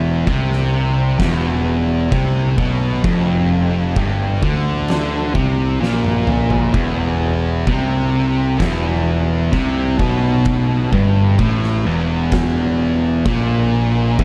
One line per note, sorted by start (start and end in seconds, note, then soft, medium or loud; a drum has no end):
0.00 0.23 E1 loud
0.00 0.25 E2 loud
0.25 1.15 C2 medium
0.25 1.17 C3 loud
0.25 kick medium
0.25 crash medium
0.53 snare soft
1.18 2.08 E1 loud
1.18 2.10 E2 loud
1.18 kick loud
1.18 snare loud
1.18 crash medium
2.11 2.55 C2 medium
2.11 2.56 C3 medium
2.11 kick loud
2.11 crash medium
2.58 3.01 B1 medium
2.58 3.03 B2 loud
2.58 kick loud
3.04 3.93 F1 medium
3.04 3.96 F2 loud
3.04 kick loud
3.04 crash medium
3.96 4.40 G1 loud
3.96 4.42 G2 loud
3.96 kick loud
3.96 crash medium
4.43 5.32 D2 loud
4.43 5.34 D3 loud
4.43 kick loud
4.88 snare loud
4.88 crash medium
5.35 5.79 C2 loud
5.35 5.80 C3 loud
5.35 kick medium
5.81 6.71 A#1 medium
5.81 6.73 A#2 medium
5.81 snare medium
6.05 high tom medium
6.27 mid tom loud
6.50 floor tom medium
6.74 7.63 E1 medium
6.74 7.66 E2 loud
6.74 kick loud
6.74 crash medium
7.66 8.56 C2 medium
7.66 8.58 C3 medium
7.66 kick loud
7.66 crash medium
8.59 9.49 E1 loud
8.59 9.51 E2 loud
8.59 kick loud
8.59 snare loud
8.59 crash medium
9.52 9.97 C2 medium
9.52 9.98 C3 medium
9.52 kick loud
9.52 crash medium
9.99 10.89 B1 loud
9.99 10.91 B2 loud
9.99 kick loud
10.45 kick loud
10.45 crash medium
10.92 11.36 G1 loud
10.92 11.38 G2 loud
10.92 kick loud
11.38 11.83 A1 loud
11.38 11.84 A2 medium
11.38 kick loud
11.38 crash medium
11.64 snare soft
11.85 13.22 E1 loud
11.85 13.24 E2 medium
12.32 kick loud
12.32 snare loud
12.32 crash medium
13.25 14.15 A#1 loud
13.25 14.17 A#2 loud
13.25 kick loud
13.25 crash medium
14.19 14.24 E1 medium
14.19 14.24 E2 loud
14.19 kick loud
14.19 crash medium